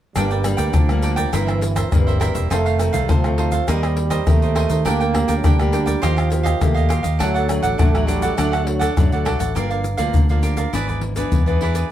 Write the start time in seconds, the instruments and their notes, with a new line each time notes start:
0.15 fingered electric bass G1, nylon-string guitar G2 G3 A#3 D4, trombone G3, cavaquinho D4 A#4 D5 G5, pandeiro, tamborim, shaker, surdo
0.31 cavaquinho A#4 D5 G5, pandeiro, shaker
0.44 nylon-string guitar G3 A#3 D4, muted cavaquinho stroke, pandeiro, tamborim, shaker
0.57 fingered electric bass D2, cavaquinho A#4 D5 G5, pandeiro, shaker, surdo
0.73 fingered electric bass D2, nylon-string guitar D3, trombone F3, cavaquinho D4 A#4 D5 G5, pandeiro, tamborim, shaker, surdo
0.89 nylon-string guitar G3 A#3 D4, pandeiro, tamborim, shaker
1.02 cavaquinho D4 A#4 D5 G5, pandeiro, shaker
1.16 cavaquinho A#4 D5 G5, pandeiro, shaker, surdo
1.33 fingered electric bass G1, nylon-string guitar G2 E3 A#3 C4, trombone E3, cavaquinho E4 A#4 C5 E5, pandeiro, tamborim, shaker, surdo
1.47 cavaquinho A#4 C5 E5, pandeiro, tamborim, shaker
1.61 muted cavaquinho stroke, pandeiro, shaker
1.76 cavaquinho A#4 C5 E5, pandeiro, tamborim, shaker, surdo
1.92 fingered electric bass G1, nylon-string guitar G2 E3 A#3 C4, trombone G3, pandeiro, tamborim, shaker, surdo
2.07 cavaquinho A#4 C5 E5, pandeiro, shaker
2.20 cavaquinho E4 A#4 C5 E5, pandeiro, tamborim, shaker
2.35 fingered electric bass E1, cavaquinho A#4 C5 E5, pandeiro, shaker, surdo
2.50 fingered electric bass F1, nylon-string guitar F2 D#3 A3 C4, trombone A3, cavaquinho D#4 A4 C5 F5, pandeiro, tamborim, shaker, surdo
2.66 cavaquinho A4 C5 F5, pandeiro, shaker
2.79 nylon-string guitar D#3 A3 C4, muted cavaquinho stroke, pandeiro, tamborim, shaker
2.93 fingered electric bass C2, cavaquinho A4 C5 F5, pandeiro, shaker, surdo
3.09 fingered electric bass D2, nylon-string guitar C3, trombone F3, cavaquinho D#4 A4 C5 F5, pandeiro, tamborim, shaker, surdo
3.24 nylon-string guitar A3 C4, pandeiro, tamborim, shaker
3.38 cavaquinho D#4 A4 C5 F5, pandeiro
3.52 cavaquinho A4 C5 F5, pandeiro, shaker, surdo
3.68 fingered electric bass D#2, nylon-string guitar D#3 A#3 C4 G4, trombone G3, cavaquinho D#4 A#4 C5 D#5, pandeiro, tamborim, shaker, surdo
3.83 cavaquinho A#4 C5 D#5, pandeiro, tamborim, shaker
3.96 muted cavaquinho stroke, pandeiro
4.10 cavaquinho A#4 C5 D#5, pandeiro, tamborim, shaker, surdo
4.27 fingered electric bass D#2, nylon-string guitar D#3 C4 G4, trombone A3, pandeiro, tamborim, shaker, surdo
4.42 cavaquinho A#4 C5 D#5, pandeiro, shaker
4.55 cavaquinho D#4 A#4 C5 D#5, pandeiro, tamborim
4.70 fingered electric bass D#3, cavaquinho A#4 C5 D#5, pandeiro, shaker, surdo
4.85 fingered electric bass D2, nylon-string guitar D3 A#3 D4 G4, trombone A#3, cavaquinho D4 A#4 D5 G5, pandeiro, tamborim, shaker, surdo
5.00 cavaquinho A#4 D5 G5, pandeiro, shaker
5.14 nylon-string guitar A#3 D4 G4, muted cavaquinho stroke, pandeiro, tamborim, surdo
5.28 fingered electric bass D2, cavaquinho A#4 D5 G5, pandeiro, shaker, surdo
5.37 trombone F#3
5.44 fingered electric bass D2, nylon-string guitar D3 A#3 D4 G4, trombone G3, cavaquinho D4 A#4 D5 G5, pandeiro, tamborim, shaker, surdo
5.59 nylon-string guitar A#3 D4 G4, pandeiro, tamborim, shaker
5.72 cavaquinho D4 A#4 D5 G5, pandeiro, shaker
5.86 cavaquinho A#4 D5 G5, pandeiro, shaker, surdo
6.02 fingered electric bass D#2, nylon-string guitar D#3 A#3 F4 G4, trombone F3, cavaquinho F4 G4 D#5 F5, pandeiro, tamborim, shaker, surdo
6.16 cavaquinho G4 D#5 F5, pandeiro, tamborim, shaker
6.30 nylon-string guitar A#3 F4 G4, muted cavaquinho stroke, pandeiro, shaker
6.43 cavaquinho G4 D#5 F5, pandeiro, tamborim, shaker, surdo
6.61 fingered electric bass D#2, nylon-string guitar A#2 A#3 F4 G4, trombone A3, pandeiro, tamborim, shaker, surdo
6.74 cavaquinho G4 D#5 F5, pandeiro, shaker
6.89 cavaquinho F4 G4 D#5 F5, pandeiro, tamborim, shaker
7.03 fingered electric bass D#2, cavaquinho G4 D#5 F5, pandeiro, shaker, surdo
7.19 fingered electric bass D2, nylon-string guitar D3 F#3 A3 D4, trombone F#3, cavaquinho D4 A4 D5 F#5, pandeiro, tamborim, shaker, surdo
7.34 cavaquinho A4 D5 F#5, pandeiro, shaker
7.48 nylon-string guitar F#3 A3 D4, muted cavaquinho stroke, pandeiro, tamborim, shaker
7.63 fingered electric bass A1, cavaquinho A4 D5 F#5, pandeiro, shaker, surdo
7.78 fingered electric bass A1, nylon-string guitar A2 F#3 A3 D4, trombone A3, cavaquinho D4 A4 D5 F#5, pandeiro, tamborim, shaker, surdo
7.95 nylon-string guitar F#3 A3 D4, pandeiro, tamborim, shaker
8.07 trombone G3, cavaquinho D4 A4 D5 F#5, pandeiro, shaker
8.22 cavaquinho A4 D5 F#5, pandeiro, shaker, surdo
8.37 fingered electric bass D2, nylon-string guitar D3 F#3 A3 D4, trombone A3, cavaquinho D4 A4 D5 F#5, pandeiro, tamborim, shaker, surdo
8.52 cavaquinho A4 D5 F#5, pandeiro, tamborim, shaker
8.67 trombone F#3, muted cavaquinho stroke, pandeiro
8.79 cavaquinho A4 D5 F#5, pandeiro, tamborim, shaker, surdo
8.96 fingered electric bass F#2, nylon-string guitar A2 F#3 A3 D4, trombone F#3, pandeiro, tamborim, shaker, surdo
9.12 fingered electric bass D2, cavaquinho A4 D5 F#5, pandeiro, shaker
9.25 fingered electric bass C2, cavaquinho D4 A4 D5 F#5, pandeiro, tamborim
9.39 fingered electric bass A1, cavaquinho A4 D5 F#5, pandeiro, shaker, surdo
9.55 fingered electric bass G1, nylon-string guitar G2 F3 A#3 D4, cavaquinho G4 A#4 D5 F5, pandeiro, shaker, surdo
9.70 cavaquinho A#4 D5 F5, pandeiro, shaker
9.84 pandeiro, shaker
9.97 fingered electric bass D2, nylon-string guitar F3 A#3 D4, cavaquinho A#4 D5 F5, pandeiro, shaker, surdo
10.14 fingered electric bass D2, nylon-string guitar D3, pandeiro, shaker, surdo
10.29 nylon-string guitar F3 A#3 D4, cavaquinho A#4 D5 F5, pandeiro, shaker
10.43 cavaquinho G4 A#4 D5 F5, pandeiro, shaker
10.57 cavaquinho A#4 D5 F5, pandeiro, shaker, surdo
10.73 fingered electric bass G#1, nylon-string guitar G#2 E3 B3 D4, cavaquinho E4 G#4 B4 D5, pandeiro, shaker, surdo
10.88 cavaquinho G#4 B4 D5, pandeiro, shaker, surdo
11.01 muted cavaquinho stroke, pandeiro
11.16 nylon-string guitar E3 B3 D4, cavaquinho G#4 B4 D5, pandeiro, shaker, surdo
11.32 fingered electric bass E2, nylon-string guitar G#2, pandeiro, shaker, surdo
11.46 nylon-string guitar E3 B3 D4, cavaquinho G#4 B4 D5, pandeiro, shaker
11.61 cavaquinho E4 G#4 B4 D5, pandeiro, surdo
11.75 cavaquinho G#4 B4 D5, pandeiro, shaker